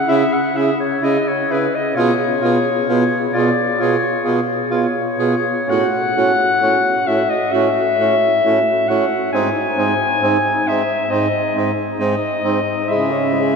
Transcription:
Already playing: clarinet F#5
0.08 baritone saxophone C#3, tenor saxophone E4, alto saxophone G#4, clarinet E5
0.33 clarinet F#5
0.54 baritone saxophone C#3, tenor saxophone E4, alto saxophone G#4, clarinet E5
0.80 clarinet C#5
1.02 baritone saxophone C#3, tenor saxophone E4, alto saxophone G#4, clarinet D#5
1.28 clarinet C#5
1.50 baritone saxophone C#3, tenor saxophone E4, alto saxophone G#4, clarinet B4
1.75 clarinet D#5
1.96 baritone saxophone B2, tenor saxophone F4, alto saxophone G#4, clarinet C#5
2.41 baritone saxophone B2, tenor saxophone F4, alto saxophone G#4
2.88 baritone saxophone B2, tenor saxophone F4, alto saxophone G#4
3.33 baritone saxophone B2, tenor saxophone F4, clarinet D5
3.37 alto saxophone G#4
3.79 baritone saxophone B2, tenor saxophone F4, alto saxophone G#4, clarinet C#5
4.24 baritone saxophone B2, tenor saxophone F4, alto saxophone G#4
4.70 baritone saxophone B2, tenor saxophone F4, alto saxophone G#4, clarinet C#5
5.19 baritone saxophone B2, tenor saxophone F4, alto saxophone G#4
5.68 baritone saxophone A2, tenor saxophone C#4, alto saxophone F#4, clarinet F#5
6.15 baritone saxophone A2, tenor saxophone C#4, alto saxophone F#4
6.61 baritone saxophone A2, tenor saxophone C#4, alto saxophone F#4
7.07 baritone saxophone A2, tenor saxophone C#4, alto saxophone F#4, clarinet E5
7.29 clarinet D#5
7.52 baritone saxophone A2, tenor saxophone C#4, alto saxophone F#4, clarinet E5
7.99 baritone saxophone A2, tenor saxophone C#4, alto saxophone F#4
8.44 baritone saxophone A2, tenor saxophone C#4, alto saxophone F#4
8.88 baritone saxophone A2, tenor saxophone C#4, alto saxophone F#4, clarinet F#5
9.32 baritone saxophone G#2, tenor saxophone C4, alto saxophone D#4, clarinet G#5
9.77 baritone saxophone G#2, tenor saxophone C4, alto saxophone D#4
10.21 baritone saxophone G#2, tenor saxophone C4, alto saxophone D#4
10.66 baritone saxophone G#2, tenor saxophone C4, alto saxophone D#4, clarinet E5
11.10 baritone saxophone G#2, tenor saxophone C4, alto saxophone D#4, clarinet D#5
11.55 baritone saxophone G#2, tenor saxophone C4, alto saxophone D#4
11.99 baritone saxophone G#2, tenor saxophone C4, alto saxophone D#4, clarinet D#5
12.44 baritone saxophone G#2, tenor saxophone C4, alto saxophone D#4
12.88 baritone saxophone C#3, tenor saxophone G#3, alto saxophone E4, clarinet E5
13.11 tenor saxophone C#4, alto saxophone G#4
13.33 tenor saxophone G#3, alto saxophone E4

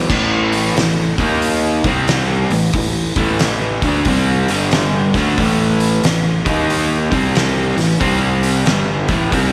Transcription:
0.09 fingered electric bass A1, overdriven electric guitar A2 E3 A3, kick, crash
0.52 open hi-hat
0.74 fingered electric bass A1, overdriven electric guitar A2 E3, snare, open hi-hat
1.18 fingered electric bass D#2, overdriven electric guitar D#3 A#3 D#4, kick, open hi-hat
1.42 open hi-hat
1.84 fingered electric bass C2, overdriven electric guitar C3 G3 C4, kick, open hi-hat
2.08 snare, open hi-hat
2.50 fingered electric bass A1, overdriven electric guitar A2 E3, open hi-hat
2.73 fingered electric bass A1, overdriven electric guitar A2 E3, kick, open hi-hat
3.16 fingered electric bass A1, overdriven electric guitar A2 E3 A3, kick, open hi-hat
3.39 snare, open hi-hat
3.82 fingered electric bass D2, overdriven electric guitar D3 A3 D4, kick, open hi-hat
4.05 fingered electric bass C2, overdriven electric guitar C3 G3 C4, kick, open hi-hat
4.48 fingered electric bass G1, overdriven electric guitar G2 D3 G3, open hi-hat
4.71 snare, open hi-hat
5.14 fingered electric bass D2, overdriven electric guitar D3 A3 D4, kick, snare, open hi-hat
5.38 fingered electric bass A1, overdriven electric guitar A2 E3 A3, kick, open hi-hat
5.80 open hi-hat
6.04 fingered electric bass A1, overdriven electric guitar A2 E3, snare, open hi-hat
6.45 fingered electric bass D#2, overdriven electric guitar D#3 A#3 D#4, kick, open hi-hat
6.70 open hi-hat
7.11 fingered electric bass C2, overdriven electric guitar C3 G3 C4, kick, open hi-hat
7.35 snare, open hi-hat
7.77 fingered electric bass A1, overdriven electric guitar A2 E3, snare, open hi-hat
8.00 fingered electric bass C2, overdriven electric guitar C3 G3 C4, kick, open hi-hat
8.43 open hi-hat
8.66 fingered electric bass G1, overdriven electric guitar G2 D3 G3, snare, open hi-hat
9.08 fingered electric bass A1, overdriven electric guitar A2 E3 A3, kick, open hi-hat
9.32 fingered electric bass C2, overdriven electric guitar C3 G3 C4, kick, open hi-hat

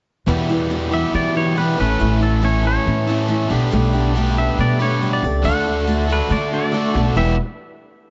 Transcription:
0.26 steel-string acoustic guitar E2 B2 E3 G3 B3 E4, upright bass E2
0.30 overdriven electric guitar G4
0.49 steel-string acoustic guitar E3 G3 B3 E4
0.70 steel-string acoustic guitar E2 B2 E3 G3 B3 E4
0.91 steel-string acoustic guitar E3 G3 B3 E4, overdriven electric guitar G4, clean electric guitar E5
0.95 overdriven electric guitar E2 B2
1.13 steel-string acoustic guitar E3 G3 B3 E4, upright bass E3, clean electric guitar D5
1.35 steel-string acoustic guitar E3 G3 B3 E4, clean electric guitar C#5
1.56 steel-string acoustic guitar E2 B2 E3 G3 B3 E4, clean electric guitar B4
1.61 overdriven electric guitar G4
1.77 upright bass A1, overdriven electric guitar A2 E3 A3, steel-string acoustic guitar B3 C#4 E4, clean electric guitar B4
1.82 overdriven electric guitar A4
1.99 upright bass A1, steel-string acoustic guitar A2 E3 B3 C#4 E4
2.21 steel-string acoustic guitar B3 C#4 E4, clean electric guitar A4
2.41 steel-string acoustic guitar A2 E3 B3 C#4 E4, overdriven electric guitar A3, clean electric guitar C#5
2.46 overdriven electric guitar A4
2.63 steel-string acoustic guitar B3 C#4 E4
2.67 clean electric guitar C#5
2.85 upright bass A2, steel-string acoustic guitar E3 B3 C#4 E4
3.07 overdriven electric guitar E3 A3 A4, steel-string acoustic guitar B3 C#4 E4
3.11 overdriven electric guitar A2
3.26 steel-string acoustic guitar A2 E3 B3 C#4 E4, clean electric guitar B4
3.49 upright bass B1, steel-string acoustic guitar A3 D4 G4, overdriven electric guitar B3
3.53 overdriven electric guitar B4
3.71 upright bass B1, steel-string acoustic guitar B2 G3 A3 D4 G4, tonewheel organ B3 D4 G4 A4
3.93 steel-string acoustic guitar A3 D4 G4
4.13 steel-string acoustic guitar B2 G3 A3, overdriven electric guitar B3 B4
4.17 steel-string acoustic guitar D4 G4
4.37 steel-string acoustic guitar A3 D4 G4, clean electric guitar E5
4.57 upright bass B2, steel-string acoustic guitar G3 A3 D4 G4, clean electric guitar D5
4.79 steel-string acoustic guitar A3 D4 G4, overdriven electric guitar B3 B4, clean electric guitar C#5
5.01 steel-string acoustic guitar B2 G3 A3 D4 G4
5.13 clean electric guitar D5
5.23 upright bass C#2, steel-string acoustic guitar A3 D4 G4
5.44 upright bass D2, steel-string acoustic guitar D3 A3 D4 F#4, tonewheel organ A3 D4 F#4 A4, overdriven electric guitar A4, clean electric guitar F#5
5.65 steel-string acoustic guitar A3 D4 F#4
5.87 steel-string acoustic guitar D3 A3 D4 F#4
6.08 steel-string acoustic guitar D4 F#4, overdriven electric guitar A4
6.12 overdriven electric guitar D3, steel-string acoustic guitar A3, pedal steel guitar B4
6.29 steel-string acoustic guitar D3 A3 D4 F#4, upright bass D3, pedal steel guitar D5
6.52 steel-string acoustic guitar A3 D4 F#4, pedal steel guitar D5
6.72 steel-string acoustic guitar D3 A3 D4 F#4
6.77 overdriven electric guitar A4
6.94 upright bass B1, steel-string acoustic guitar A3 D4 F#4
7.15 upright bass E1, steel-string acoustic guitar E2 B2 E3 G3 B3 G4, tonewheel organ B3 E4 G4 B4, clean electric guitar E5, pedal steel guitar E5

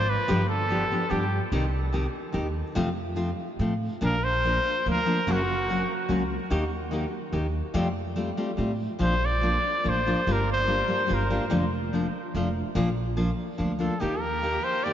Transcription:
Already playing: upright bass G#1, trumpet C5
0.10 trumpet B4
0.28 upright bass G1, nylon-string guitar G2 D3 F3 B3 D4 G4
0.49 trumpet A4
0.69 nylon-string guitar F3 B3 D4 G4
0.91 nylon-string guitar F3 B3 D4 G4
1.10 upright bass G2, nylon-string guitar F3 B3 D4 G4, trumpet G4
1.52 upright bass C2, nylon-string guitar C3 D#3 C4 D#4 G4
1.93 nylon-string guitar D#3 C4 D#4 G4
2.32 upright bass D#2, nylon-string guitar D#3 C4 D#4 G4
2.75 nylon-string guitar F2 C3 F3 A3 C4 F4, upright bass F2
3.16 nylon-string guitar F3 A3 C4 F4
3.59 upright bass A2, nylon-string guitar F3 A3 C4 F4
4.01 upright bass A#1, nylon-string guitar A#2 F3 A#3 D4 F4, trumpet A#4
4.24 trumpet C5
4.43 nylon-string guitar F3 A#3 D4 F4
4.86 upright bass D2, nylon-string guitar F3 A#3 D4 F4
4.91 trumpet A#4
5.06 nylon-string guitar F3 A#3 D4 F4
5.27 upright bass F#1, nylon-string guitar F#2 C#3 F#3 A#3 C#4 F#4
5.32 trumpet F#4
5.69 nylon-string guitar F#3 A#3 C#4 F#4
6.09 upright bass C#2, nylon-string guitar F#3 A#3 C#4 F#4
6.50 upright bass D#2, nylon-string guitar D#3 A#3 D#4 G4
6.91 nylon-string guitar D#3 A#3 D#4 G4
7.32 upright bass D#2, nylon-string guitar D#3 A#3 D#4 G4
7.74 upright bass F2, nylon-string guitar F2 C3 G3 A3 C4 F4
8.16 nylon-string guitar G3 A3 C4 F4
8.37 nylon-string guitar G3 A3 C4 F4
8.57 upright bass A2, nylon-string guitar G3 A3 C4 F4
8.99 upright bass A#1, nylon-string guitar A#2 F3 A#3 D4 F4, trumpet C5
9.25 trumpet D5
9.41 nylon-string guitar F3 A#3 D4 F4
9.84 upright bass A1, nylon-string guitar F3 A#3 D4 F4
9.89 trumpet C5
10.06 nylon-string guitar F3 A#3 D4 F4
10.27 upright bass G1, nylon-string guitar G3 A#3 D4 F4
10.32 trumpet A#4
10.52 trumpet C5
10.67 nylon-string guitar G3 A#3 D4 F4
10.88 nylon-string guitar G3 A#3 D4 F4
11.07 upright bass G1, nylon-string guitar G3 A#3 D4 F4
11.14 trumpet A#4
11.30 nylon-string guitar G3 A#3 D4 F4
11.50 upright bass F1, nylon-string guitar F2 D3 F3 A#3 D4 F4
11.93 nylon-string guitar F3 A#3 D4 F4
12.35 upright bass F1, nylon-string guitar F3 A3 D4 F4
12.75 upright bass A#1, nylon-string guitar A#2 F3 A#3 D4 F4
13.17 nylon-string guitar F3 A#3 D4 F4
13.58 upright bass D2, nylon-string guitar F3 A#3 D4 F4
13.79 nylon-string guitar F3 A#3 D4 F4, trumpet A4
14.00 upright bass D#2, nylon-string guitar D#3 A#3 D#4 G4, violin section A#3 G4, trumpet G4
14.04 violin section D#4
14.20 trumpet A#4
14.43 nylon-string guitar D#3 A#3 D#4 G4
14.64 trumpet C5
14.84 nylon-string guitar D#3 A#3 D#4 G4, trumpet D5

